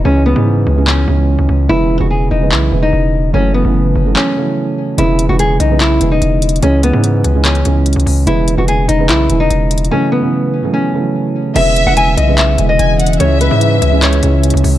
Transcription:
<<
  \new Staff \with { instrumentName = "Violin section" } { \time 4/4 \key e \major \tempo 4 = 146 r1 | r1 | r1 | r1 |
r1 | r1 | r1 | e''2 r4 gis''8 fis''8 |
e''2. r4 | }
  \new Staff \with { instrumentName = "Nylon-string guitar" } { \time 4/4 \key e \major cis'8 b4. cis'2 | e'8. fis'16 gis'8 dis'8 e'8. dis'4~ dis'16 | cis'8 b4. cis'2 | e'8. fis'16 gis'8 dis'8 e'8. dis'4~ dis'16 |
cis'8 b4. cis'2 | e'8. fis'16 gis'8 dis'8 e'8. dis'4~ dis'16 | cis'8 b4. cis'2 | e''8. fis''16 gis''8 dis''8 e''8. dis''4~ dis''16 |
cis''8 b'4. cis''2 | }
  \new Staff \with { instrumentName = "Ambient pad" } { \time 4/4 \key e \major << { r1 | r1 | r1 | r1 |
r1 | r1 | r1 | <cis' e' gis'>1~ |
<cis' e' gis'>1 | } \\ { r1 | r1 | r1 | r1 |
r1 | r1 | r1 | e1 |
cis1 | } >> }
  \new Staff \with { instrumentName = "Felt piano" } { \clef bass \time 4/4 \key e \major <cis e gis cis'>8 r16 <cis e gis cis'>8. r16 <cis e gis cis'>8 r16 <cis e gis cis'>4 r8 | <cis e gis b>8 r16 <cis e gis b>8. r16 <cis e gis b>8 r16 <cis e gis b>4 r8 | <cis e fis a>8 r16 <cis e fis a>8. r16 <cis e fis a>8 r16 <cis e fis a>4 r8 | <cis e gis b>8 r16 <cis e gis b>8. r16 <cis e gis b>8 r16 <cis e gis b>4 r8 |
<cis e gis cis'>8 r16 <cis e gis cis'>8. r16 <cis e gis cis'>8 r16 <cis e gis cis'>4 r8 | <cis e gis b>8 r16 <cis e gis b>8. r16 <cis e gis b>8 r16 <cis e gis b>4 r8 | <cis e fis a>8 r16 <cis e fis a>8. r16 <cis e fis a>8 r16 <cis e fis a>4 r8 | <cis e gis b>8 r16 <cis e gis b>8. r16 <cis e gis b>8 r16 <cis e gis b>4 r8 |
<cis e gis cis'>8 r16 <cis e gis cis'>8. r16 <cis e gis cis'>8 r16 <cis e gis cis'>4 r8 | }
  \new Staff \with { instrumentName = "808-style bass" } { \clef bass \time 4/4 \key e \major cis,8. gis,8. cis,4 cis,8. cis,16 cis,8 | e,,8. e,,8. e,,8 b,,8 e,,8 e,,4 | fis,,8. fis,,8. fis,,8 r2 | e,,8. e,,8. b,,4 e,,8 e,,4 |
cis,8. gis,8. cis,4 cis,8. cis,16 cis,8 | e,,8. e,,8. e,,8 b,,8 e,,8 e,,4 | r1 | e,,8. e,,8. b,,4 e,,8 e,,4 |
cis,8. gis,8. cis,4 cis,8. cis,16 cis,8 | }
  \new DrumStaff \with { instrumentName = "Drums" } \drummode { \time 4/4 r4 r4 hc4 r4 | r4 r4 hc4 r4 | r4 r4 hc4 r4 | hh8 hh8 hh8 hh8 <hc hh>8 hh8 \tuplet 3/2 { hh16 r16 r16 hh16 hh16 hh16 } |
hh8 hh8 hh8 hh8 <hc hh>16 hh16 hh8 \tuplet 3/2 { hh16 hh16 hh16 hho16 r16 r16 } | hh8 hh8 hh8 hh8 <hc hh>8 hh8 \tuplet 3/2 { hh16 r16 r16 hh16 hh16 hh16 } | r4 r4 r4 r4 | <cymc hh>8 hh8 hh8 hh8 <hc hh>8 hh8 \tuplet 3/2 { hh16 r16 r16 hh16 hh16 hh16 } |
hh8 hh8 hh8 hh8 <hc hh>16 hh16 hh8 \tuplet 3/2 { hh16 hh16 hh16 hho16 r16 r16 } | }
>>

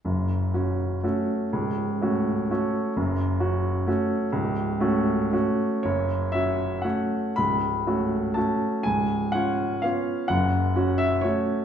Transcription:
\new Staff \with { instrumentName = "Grand piano" } { \time 3/4 \key fis \minor \tempo 4 = 123 << { r2. | r2. | r2. | r2. |
cis''4 e''4 fis''4 | b''2 a''4 | gis''4 fis''4 eis''4 | fis''4. e''8 cis''4 | } \\ { <fis,, fis,>4 <cis' fis'>4 <a cis' fis'>4 | <cis,, cis,>4 <a cis' fis'>4 <a cis' fis'>4 | <fis,, fis,>4 <cis' fis'>4 <a cis' fis'>4 | <cis,, cis,>4 <a cis' fis'>4 <a cis' fis'>4 |
<fis,, fis,>4 <cis' fis'>4 <a cis' fis'>4 | <cis,, cis,>4 <a cis' fis'>4 <a cis' fis'>4 | <cis,, cis,>4 <cis' eis'>4 <b cis' eis'>4 | <fis,, fis,>4 <cis' fis'>4 <a cis' fis'>4 | } >> }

